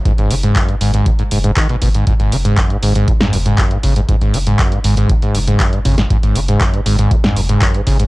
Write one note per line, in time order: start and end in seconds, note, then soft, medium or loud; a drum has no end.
0.05 0.12 G#2 medium
0.05 kick loud
0.05 closed hi-hat soft
0.18 0.29 G#1 medium
0.18 0.32 G#2 medium
0.18 closed hi-hat soft
0.31 0.52 F#1 medium
0.31 0.35 D#3 medium
0.31 open hi-hat loud
0.43 0.57 G#2 loud
0.43 closed hi-hat soft
0.56 0.70 F#2 medium
0.56 kick loud
0.56 clap loud
0.56 closed hi-hat soft
0.69 0.75 G#2 loud
0.69 closed hi-hat soft
0.81 1.02 G#1 loud
0.81 0.92 G#2 loud
0.81 open hi-hat loud
0.94 1.08 G#2 medium
0.94 closed hi-hat soft
1.06 1.10 A#2 medium
1.06 kick loud
1.06 closed hi-hat soft
1.19 1.23 G#2 medium
1.19 closed hi-hat soft
1.31 1.53 F#1 medium
1.31 1.39 G#2 medium
1.31 open hi-hat loud
1.44 1.51 G#2 loud
1.44 closed hi-hat soft
1.56 1.67 D#3 loud
1.56 kick loud
1.56 clap loud
1.56 closed hi-hat soft
1.69 1.76 B2 medium
1.69 closed hi-hat soft
1.82 2.03 G#1 loud
1.82 1.89 B2 loud
1.82 kick medium
1.82 open hi-hat loud
1.94 2.05 G#2 medium
1.94 closed hi-hat soft
2.07 2.14 G#2 medium
2.07 kick loud
2.07 closed hi-hat soft
2.20 2.30 G#1 loud
2.20 2.34 G#2 medium
2.20 closed hi-hat soft
2.32 2.54 F#1 medium
2.32 2.36 D#3 medium
2.32 open hi-hat loud
2.45 2.59 G#2 loud
2.45 closed hi-hat soft
2.57 2.72 F#2 medium
2.57 kick loud
2.57 clap loud
2.57 closed hi-hat soft
2.70 2.77 G#2 loud
2.70 closed hi-hat soft
2.83 3.04 G#1 medium
2.83 2.93 G#2 loud
2.83 open hi-hat loud
2.95 3.09 G#2 loud
2.95 closed hi-hat soft
3.08 3.12 A#2 medium
3.08 kick loud
3.08 closed hi-hat soft
3.21 3.35 G#2 medium
3.21 snare medium
3.21 closed hi-hat soft
3.21 mid tom medium
3.33 3.54 F#1 medium
3.33 3.37 F#2 loud
3.33 open hi-hat loud
3.46 3.60 G#2 loud
3.46 closed hi-hat soft
3.58 3.73 F#2 medium
3.58 kick loud
3.58 clap loud
3.58 closed hi-hat soft
3.71 3.78 G#2 loud
3.71 closed hi-hat soft
3.83 4.05 G#1 medium
3.83 3.94 C#3 loud
3.83 kick medium
3.83 open hi-hat loud
3.96 4.00 G#2 loud
3.96 closed hi-hat soft
4.09 4.16 G#2 medium
4.09 kick loud
4.09 closed hi-hat medium
4.21 4.32 G#1 medium
4.21 4.35 G#2 medium
4.21 closed hi-hat soft
4.34 4.55 F#1 medium
4.34 4.38 D#3 medium
4.34 open hi-hat loud
4.47 4.61 G#2 loud
4.47 closed hi-hat soft
4.59 4.73 F#2 medium
4.59 kick loud
4.59 clap loud
4.59 closed hi-hat soft
4.72 4.79 G#2 loud
4.72 closed hi-hat soft
4.84 5.05 G#1 medium
4.84 4.95 G#2 loud
4.84 open hi-hat loud
4.97 5.11 G#2 medium
4.97 closed hi-hat soft
5.09 5.14 A#2 medium
5.09 kick loud
5.09 closed hi-hat medium
5.22 5.36 G#2 medium
5.22 closed hi-hat soft
5.35 5.56 F#1 medium
5.35 5.39 F#2 loud
5.35 open hi-hat loud
5.48 5.62 G#2 medium
5.48 closed hi-hat soft
5.60 5.74 F#2 medium
5.60 kick loud
5.60 clap loud
5.60 closed hi-hat soft
5.73 5.80 G#2 loud
5.73 closed hi-hat soft
5.85 6.06 G#1 medium
5.85 5.96 C#3 loud
5.85 kick medium
5.85 mid tom medium
5.85 open hi-hat loud
5.98 6.02 G#2 loud
5.98 snare medium
5.98 closed hi-hat medium
6.10 6.17 G#2 medium
6.10 kick loud
6.10 closed hi-hat medium
6.23 6.34 G#1 medium
6.23 6.37 G#2 medium
6.23 closed hi-hat soft
6.36 6.57 F#1 medium
6.36 6.40 D#3 medium
6.36 open hi-hat loud
6.48 6.62 G#2 loud
6.48 closed hi-hat medium
6.61 6.75 F#2 medium
6.61 kick loud
6.61 clap loud
6.61 closed hi-hat medium
6.74 6.80 G#2 loud
6.74 closed hi-hat soft
6.86 7.07 G#1 loud
6.86 6.97 G#2 loud
6.86 open hi-hat loud
6.99 7.13 G#2 loud
6.99 closed hi-hat medium
7.11 7.15 A#2 medium
7.11 kick loud
7.11 closed hi-hat medium
7.24 7.38 G#2 medium
7.24 snare medium
7.24 closed hi-hat soft
7.24 mid tom medium
7.36 7.58 F#1 medium
7.36 7.41 F#2 loud
7.36 open hi-hat loud
7.49 7.63 G#2 loud
7.49 closed hi-hat medium
7.62 7.76 F#2 medium
7.62 kick loud
7.62 clap loud
7.62 closed hi-hat medium
7.74 7.81 G#2 loud
7.74 closed hi-hat soft
7.87 8.07 G#1 medium
7.87 7.97 C#3 loud
7.87 kick medium
7.87 open hi-hat loud
8.00 8.04 G#2 loud
8.00 closed hi-hat medium